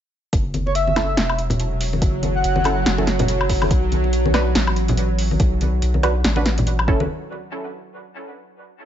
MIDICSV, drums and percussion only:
0, 0, Header, 1, 2, 480
1, 0, Start_track
1, 0, Key_signature, 3, "minor"
1, 0, Tempo, 422535
1, 373, Time_signature, 4, 2, 24, 8
1, 10056, End_track
2, 0, Start_track
2, 0, Title_t, "Drums"
2, 374, Note_on_c, 9, 36, 116
2, 374, Note_on_c, 9, 42, 82
2, 487, Note_off_c, 9, 36, 0
2, 488, Note_off_c, 9, 42, 0
2, 614, Note_on_c, 9, 42, 54
2, 615, Note_on_c, 9, 63, 65
2, 727, Note_off_c, 9, 42, 0
2, 728, Note_off_c, 9, 63, 0
2, 758, Note_on_c, 9, 62, 38
2, 853, Note_on_c, 9, 42, 84
2, 871, Note_off_c, 9, 62, 0
2, 967, Note_off_c, 9, 42, 0
2, 993, Note_on_c, 9, 63, 76
2, 1094, Note_on_c, 9, 38, 61
2, 1094, Note_on_c, 9, 42, 55
2, 1094, Note_on_c, 9, 77, 52
2, 1102, Note_on_c, 9, 62, 61
2, 1107, Note_off_c, 9, 63, 0
2, 1207, Note_off_c, 9, 38, 0
2, 1207, Note_off_c, 9, 42, 0
2, 1207, Note_off_c, 9, 77, 0
2, 1216, Note_off_c, 9, 62, 0
2, 1333, Note_on_c, 9, 38, 121
2, 1333, Note_on_c, 9, 42, 83
2, 1446, Note_off_c, 9, 38, 0
2, 1446, Note_off_c, 9, 42, 0
2, 1471, Note_on_c, 9, 77, 58
2, 1574, Note_on_c, 9, 42, 56
2, 1585, Note_off_c, 9, 77, 0
2, 1688, Note_off_c, 9, 42, 0
2, 1703, Note_on_c, 9, 64, 97
2, 1710, Note_on_c, 9, 42, 66
2, 1813, Note_off_c, 9, 42, 0
2, 1813, Note_on_c, 9, 42, 83
2, 1816, Note_off_c, 9, 64, 0
2, 1926, Note_off_c, 9, 42, 0
2, 2052, Note_on_c, 9, 46, 97
2, 2166, Note_off_c, 9, 46, 0
2, 2195, Note_on_c, 9, 63, 77
2, 2292, Note_on_c, 9, 36, 126
2, 2292, Note_on_c, 9, 42, 85
2, 2308, Note_off_c, 9, 63, 0
2, 2406, Note_off_c, 9, 36, 0
2, 2406, Note_off_c, 9, 42, 0
2, 2531, Note_on_c, 9, 63, 75
2, 2532, Note_on_c, 9, 42, 57
2, 2644, Note_off_c, 9, 63, 0
2, 2646, Note_off_c, 9, 42, 0
2, 2773, Note_on_c, 9, 42, 82
2, 2887, Note_off_c, 9, 42, 0
2, 2905, Note_on_c, 9, 63, 95
2, 3003, Note_on_c, 9, 62, 54
2, 3012, Note_on_c, 9, 42, 55
2, 3012, Note_on_c, 9, 77, 52
2, 3018, Note_off_c, 9, 63, 0
2, 3116, Note_off_c, 9, 62, 0
2, 3126, Note_off_c, 9, 42, 0
2, 3126, Note_off_c, 9, 77, 0
2, 3250, Note_on_c, 9, 38, 123
2, 3250, Note_on_c, 9, 42, 83
2, 3364, Note_off_c, 9, 38, 0
2, 3364, Note_off_c, 9, 42, 0
2, 3390, Note_on_c, 9, 62, 71
2, 3490, Note_on_c, 9, 38, 66
2, 3490, Note_on_c, 9, 42, 56
2, 3503, Note_off_c, 9, 62, 0
2, 3604, Note_off_c, 9, 38, 0
2, 3604, Note_off_c, 9, 42, 0
2, 3627, Note_on_c, 9, 42, 65
2, 3631, Note_on_c, 9, 64, 109
2, 3730, Note_off_c, 9, 42, 0
2, 3730, Note_on_c, 9, 42, 85
2, 3745, Note_off_c, 9, 64, 0
2, 3844, Note_off_c, 9, 42, 0
2, 3870, Note_on_c, 9, 77, 52
2, 3971, Note_on_c, 9, 36, 65
2, 3971, Note_on_c, 9, 46, 97
2, 3984, Note_off_c, 9, 77, 0
2, 4084, Note_off_c, 9, 46, 0
2, 4085, Note_off_c, 9, 36, 0
2, 4109, Note_on_c, 9, 77, 53
2, 4113, Note_on_c, 9, 63, 87
2, 4211, Note_on_c, 9, 36, 120
2, 4211, Note_on_c, 9, 42, 79
2, 4223, Note_off_c, 9, 77, 0
2, 4227, Note_off_c, 9, 63, 0
2, 4325, Note_off_c, 9, 36, 0
2, 4325, Note_off_c, 9, 42, 0
2, 4452, Note_on_c, 9, 42, 54
2, 4454, Note_on_c, 9, 63, 69
2, 4566, Note_off_c, 9, 42, 0
2, 4567, Note_off_c, 9, 63, 0
2, 4588, Note_on_c, 9, 62, 36
2, 4691, Note_on_c, 9, 42, 82
2, 4702, Note_off_c, 9, 62, 0
2, 4804, Note_off_c, 9, 42, 0
2, 4834, Note_on_c, 9, 63, 89
2, 4930, Note_on_c, 9, 38, 63
2, 4930, Note_on_c, 9, 42, 55
2, 4930, Note_on_c, 9, 77, 54
2, 4937, Note_on_c, 9, 62, 56
2, 4948, Note_off_c, 9, 63, 0
2, 5044, Note_off_c, 9, 38, 0
2, 5044, Note_off_c, 9, 42, 0
2, 5044, Note_off_c, 9, 77, 0
2, 5050, Note_off_c, 9, 62, 0
2, 5171, Note_on_c, 9, 38, 127
2, 5171, Note_on_c, 9, 42, 85
2, 5285, Note_off_c, 9, 38, 0
2, 5285, Note_off_c, 9, 42, 0
2, 5309, Note_on_c, 9, 77, 60
2, 5412, Note_on_c, 9, 42, 55
2, 5423, Note_off_c, 9, 77, 0
2, 5525, Note_off_c, 9, 42, 0
2, 5548, Note_on_c, 9, 42, 64
2, 5556, Note_on_c, 9, 64, 104
2, 5650, Note_off_c, 9, 42, 0
2, 5650, Note_on_c, 9, 42, 80
2, 5669, Note_off_c, 9, 64, 0
2, 5764, Note_off_c, 9, 42, 0
2, 5890, Note_on_c, 9, 46, 90
2, 6004, Note_off_c, 9, 46, 0
2, 6035, Note_on_c, 9, 63, 92
2, 6132, Note_on_c, 9, 36, 127
2, 6132, Note_on_c, 9, 42, 82
2, 6148, Note_off_c, 9, 63, 0
2, 6245, Note_off_c, 9, 42, 0
2, 6246, Note_off_c, 9, 36, 0
2, 6372, Note_on_c, 9, 42, 53
2, 6381, Note_on_c, 9, 63, 74
2, 6485, Note_off_c, 9, 42, 0
2, 6495, Note_off_c, 9, 63, 0
2, 6614, Note_on_c, 9, 42, 77
2, 6727, Note_off_c, 9, 42, 0
2, 6750, Note_on_c, 9, 63, 83
2, 6854, Note_on_c, 9, 42, 53
2, 6854, Note_on_c, 9, 77, 55
2, 6855, Note_on_c, 9, 62, 57
2, 6863, Note_off_c, 9, 63, 0
2, 6968, Note_off_c, 9, 42, 0
2, 6968, Note_off_c, 9, 62, 0
2, 6968, Note_off_c, 9, 77, 0
2, 7094, Note_on_c, 9, 38, 124
2, 7094, Note_on_c, 9, 42, 81
2, 7207, Note_off_c, 9, 38, 0
2, 7207, Note_off_c, 9, 42, 0
2, 7224, Note_on_c, 9, 62, 65
2, 7334, Note_on_c, 9, 38, 65
2, 7334, Note_on_c, 9, 42, 55
2, 7337, Note_off_c, 9, 62, 0
2, 7448, Note_off_c, 9, 38, 0
2, 7448, Note_off_c, 9, 42, 0
2, 7472, Note_on_c, 9, 42, 60
2, 7480, Note_on_c, 9, 64, 92
2, 7575, Note_off_c, 9, 42, 0
2, 7575, Note_on_c, 9, 42, 81
2, 7594, Note_off_c, 9, 64, 0
2, 7688, Note_off_c, 9, 42, 0
2, 7714, Note_on_c, 9, 77, 57
2, 7814, Note_on_c, 9, 36, 122
2, 7827, Note_off_c, 9, 77, 0
2, 7927, Note_off_c, 9, 36, 0
2, 7955, Note_on_c, 9, 63, 93
2, 8069, Note_off_c, 9, 63, 0
2, 10056, End_track
0, 0, End_of_file